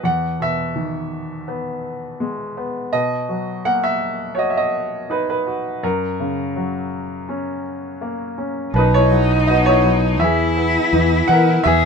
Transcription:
0.04 grand piano E2 F#5
0.40 grand piano B2 E5
0.76 grand piano D#3
1.48 grand piano B3
2.20 grand piano G#3
2.57 grand piano B3
2.93 grand piano B2 D#5
3.29 grand piano F#3
3.65 grand piano A#3 F#5
3.84 grand piano E5
4.35 grand piano F#4 C#5 D#5
4.50 grand piano E5
4.57 grand piano D#5
5.10 grand piano D#4 B4
5.30 grand piano B4
5.47 grand piano F#4
5.83 grand piano F#2 A#4
6.20 grand piano C#3
6.56 grand piano F#3
7.29 grand piano C#4
8.01 grand piano A#3
8.38 grand piano C#4
8.74 fingered electric bass B1, grand piano B2 B4, cello D#4
8.78 grand piano D#4
8.94 grand piano E4 C#5
9.11 grand piano F#3
9.47 grand piano B3 F#4 D#5
9.66 grand piano E4 C#5
9.84 grand piano F#3
10.20 fingered electric bass E2, grand piano E3 G#4 E5, cello E4
10.57 grand piano B3
10.93 fingered electric bass E2, grand piano E3
11.27 fingered electric bass E3, grand piano B3 F#5
11.32 grand piano A#4
11.64 fingered electric bass E2, grand piano E3 G#4 E5, cello G#4

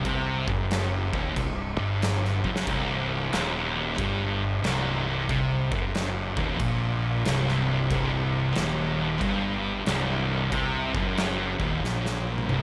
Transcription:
0.04 fingered electric bass C2, distorted electric guitar C3, kick, crash
0.47 fingered electric bass F#1, distorted electric guitar F#2, kick
0.71 snare, crash
1.13 fingered electric bass D#1, distorted electric guitar D#2, kick
1.36 fingered electric bass C1, distorted electric guitar C2, kick, crash
1.78 fingered electric bass G1, distorted electric guitar G2
2.02 snare, crash
2.25 snare
2.44 fingered electric bass F#1, distorted electric guitar F#2, kick
2.56 snare
2.67 fingered electric bass C1, distorted electric guitar C2, kick, crash
3.33 fingered electric bass D#1, distorted electric guitar D#2, snare, crash
3.98 fingered electric bass G1, distorted electric guitar G2, kick, crash
4.63 fingered electric bass C1, distorted electric guitar C2, snare, crash
5.29 fingered electric bass C2, distorted electric guitar C3, kick, crash
5.72 fingered electric bass F#1, distorted electric guitar F#2, kick
5.95 snare, crash
6.37 fingered electric bass D#1, distorted electric guitar D#2, kick
6.59 fingered electric bass A#1, distorted electric guitar A#2, kick, crash
7.25 fingered electric bass C1, distorted electric guitar C2, snare, crash
7.48 snare
7.90 fingered electric bass C1, distorted electric guitar C2, kick, crash
8.55 fingered electric bass D#1, distorted electric guitar D#2, snare, crash
9.21 fingered electric bass G1, distorted electric guitar G2, kick, crash
9.86 fingered electric bass C1, distorted electric guitar C2, snare, crash
10.52 fingered electric bass C2, distorted electric guitar C3, kick, crash
10.94 fingered electric bass F#1, distorted electric guitar F#2, kick
11.17 snare, crash
11.60 fingered electric bass D#1, distorted electric guitar D#2, kick
11.83 fingered electric bass A#1, distorted electric guitar A#2, snare
12.06 snare
12.38 high tom
12.49 fingered electric bass C1, distorted electric guitar C2, mid tom

